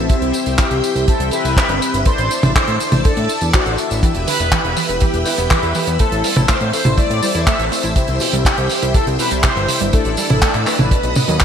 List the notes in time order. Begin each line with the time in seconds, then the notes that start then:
Already playing: C4 E5 E6
0.09 E4 G4 C5 E5 G5, kick, closed hi-hat, tambourine
0.22 C2, closed hi-hat
0.33 closed hi-hat, tambourine
0.46 C2, closed hi-hat, tambourine
0.58 G4, kick, clap, closed hi-hat, tambourine
0.71 C2, closed hi-hat
0.84 closed hi-hat, tambourine
0.95 C2, closed hi-hat, tambourine
1.08 A4, kick, closed hi-hat, tambourine
1.20 C2, closed hi-hat
1.31 C4 E4 G4 B4 E5, closed hi-hat, tambourine
1.45 C2, closed hi-hat, tambourine
1.57 kick, clap, closed hi-hat, tambourine
1.69 G1, closed hi-hat
1.82 closed hi-hat, tambourine
1.94 G1, closed hi-hat, tambourine
2.06 D4 E4 A4 C5 D5 A5, kick, closed hi-hat, tambourine
2.18 A1, closed hi-hat
2.31 closed hi-hat, tambourine
2.43 A1, closed hi-hat, high tom, tambourine
2.55 C5, kick, clap, closed hi-hat, tambourine
2.68 A2, closed hi-hat
2.80 closed hi-hat, tambourine
2.92 A1, closed hi-hat, high tom, tambourine
3.04 A4, kick, closed hi-hat, tambourine
3.17 A2, closed hi-hat
3.29 closed hi-hat, tambourine
3.41 E2 D4 E4 A4 D5, closed hi-hat, tambourine
3.53 D4 E4 F#4 A4 C5, kick, clap, closed hi-hat, tambourine
3.66 A1, closed hi-hat
3.78 D4 E4 A4 E5, closed hi-hat, tambourine
3.91 A1, closed hi-hat, tambourine
4.03 E3 E4 G4 B4 E5 G5, kick, closed hi-hat, tambourine
4.14 E1, closed hi-hat
4.28 D3 B4, open hi-hat, tambourine
4.39 E1 B3, closed hi-hat, tambourine
4.52 E3, kick, clap, closed hi-hat
4.65 E1, closed hi-hat
4.77 E3, open hi-hat, tambourine
4.89 E1 B3, closed hi-hat, tambourine
5.00 E3 G4, kick, closed hi-hat, tambourine
5.14 E1, closed hi-hat
5.25 D3 E4 G4 B4 E5, open hi-hat, tambourine
5.38 E1 B3, closed hi-hat, tambourine
5.50 E3, kick, clap, closed hi-hat
5.63 E2, closed hi-hat
5.75 E3, open hi-hat, tambourine
5.87 E2 B3, closed hi-hat, tambourine
5.99 A3 E4 A4 C5 E5 A5, kick, closed hi-hat, tambourine
6.12 A1, closed hi-hat
6.24 G3 A4, open hi-hat, tambourine
6.36 A1 E4, closed hi-hat, high tom, tambourine
6.49 A3 C5, kick, clap, closed hi-hat, tambourine
6.60 A2, closed hi-hat
6.73 A3 C5, open hi-hat, tambourine
6.85 A1 E4, closed hi-hat, high tom, tambourine
6.98 A3 D5, kick, closed hi-hat, tambourine
7.10 A2, closed hi-hat
7.22 G3 E4 A4 C5 E5, open hi-hat, tambourine
7.35 E2 E4, closed hi-hat, tambourine
7.47 A3 E5, kick, clap, closed hi-hat
7.59 A1, closed hi-hat
7.72 A3, open hi-hat, tambourine
7.83 A1 E4, closed hi-hat, tambourine
7.96 C3 E4 G4 C5 E5 G5, kick, closed hi-hat, tambourine
8.08 C2, closed hi-hat
8.20 B2, open hi-hat, tambourine
8.33 C2 G3, closed hi-hat, tambourine
8.45 C3 G4, kick, clap, closed hi-hat, tambourine
8.58 C2, closed hi-hat
8.69 C3, open hi-hat, tambourine
8.82 C2 G3, closed hi-hat, tambourine
8.94 C3 A4, kick, closed hi-hat, tambourine
9.07 C2, closed hi-hat
9.19 B2 E4 G4 B4 C5 E5, open hi-hat, tambourine
9.31 C2 G3, closed hi-hat, tambourine
9.43 C3 C5, kick, clap, closed hi-hat, tambourine
9.56 G1, closed hi-hat
9.68 C3, open hi-hat, tambourine
9.80 G1 G3, closed hi-hat, tambourine
9.93 A3 D4 E4 A4 D5 A5 E6, kick, closed hi-hat, tambourine
10.05 A1, closed hi-hat
10.17 G3 A4, open hi-hat, tambourine
10.30 A1 E4, closed hi-hat, high tom, tambourine
10.42 A3, kick, clap, closed hi-hat, tambourine
10.54 A2, clap, closed hi-hat
10.66 A3 B4, clap, open hi-hat, tambourine
10.79 A1 E4, closed hi-hat, high tom, tambourine
10.91 B2 B4 D#5 F#5 D#6, kick, closed hi-hat, tambourine
11.03 B1, closed hi-hat
11.15 A2, open hi-hat, high tom, tambourine
11.28 D#2 F#3 D#4 F#4 B4 D#5, closed hi-hat, tambourine
11.40 B2 D#4 F#4 B4 D#5, kick, clap, closed hi-hat, tambourine